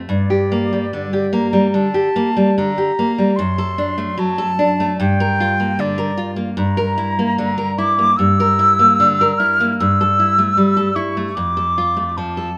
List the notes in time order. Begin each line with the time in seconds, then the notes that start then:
0.09 G2 D5
0.30 G4
0.52 A#3
0.73 G3
0.93 D3
1.13 G4
1.33 A#3 A#5
1.53 G3
1.74 D3 A5
1.94 G4
2.16 A#3
2.37 G3
2.58 D3 A#5
2.78 G4
2.99 A#3
3.18 G3
3.36 F#2 C6
3.58 A4
3.78 D4
3.98 A3
4.18 F#3 A5
4.38 A4
4.59 D4
4.80 A3
5.00 G2 G5
5.20 A#4
5.40 F4
5.60 A#3
5.79 D3 D5
5.98 A#4
6.17 F4
6.36 A#3
6.57 G2 A#5
6.77 A#4
6.98 E4
7.19 A#3
7.38 D3
7.58 A#4
7.78 E4 D6
7.99 A#3
8.17 G2 E6
8.40 A#4
8.59 E4
8.79 A#3
9.00 D3
9.21 A#4
9.39 E4 F6
9.60 A#3
9.79 G2 E6
10.01 A4
10.20 E4
10.39 A3
10.57 G3
10.77 A4
10.95 E4 C#6
11.17 A3
11.35 F2 D6
11.57 A4
11.78 F4
11.97 A3
12.17 F3 A5
12.37 A4